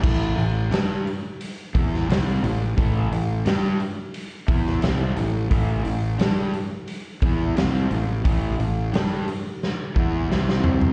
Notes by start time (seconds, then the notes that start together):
0.03 A1 A2 E3 A3, kick, crash
0.37 A1 A2 E3, open hi-hat
0.71 G2 G3 D4 G4, snare, open hi-hat
1.07 open hi-hat
1.41 open hi-hat
1.74 E2 E3 B3 E4, kick, open hi-hat
1.94 snare
2.08 C2 C3 G3 C4, open hi-hat
2.12 snare
2.42 A1 A2 E3, open hi-hat
2.77 A1 A2 E3 A3, kick, open hi-hat
3.11 A1 A2 E3, open hi-hat
3.45 G2 G3 D4 G4, snare, open hi-hat
3.80 open hi-hat
4.14 open hi-hat
4.47 E2 E3 B3 E4, kick, open hi-hat
4.67 snare
4.81 C2 C3 G3 C4, snare, open hi-hat
5.16 A1 A2 E3, open hi-hat
5.50 A1 A2 E3 A3, kick, open hi-hat
5.85 A1 A2 E3, open hi-hat
6.18 G2 G3 D4 G4, snare, open hi-hat
6.54 open hi-hat
6.88 open hi-hat
7.22 E2 E3 B3 E4, kick, open hi-hat
7.55 C2 C3 G3 C4, snare, open hi-hat
7.90 A1 A2 E3, open hi-hat
8.24 A1 A2 E3 A3, kick, open hi-hat
8.59 A1 A2 E3, open hi-hat
8.93 G2 G3 D4 G4, snare, open hi-hat
9.28 open hi-hat
9.63 snare
9.95 E2 E3 B3 E4, kick
10.30 C2 C3 G3 C4, snare
10.49 snare
10.64 floor tom
10.81 floor tom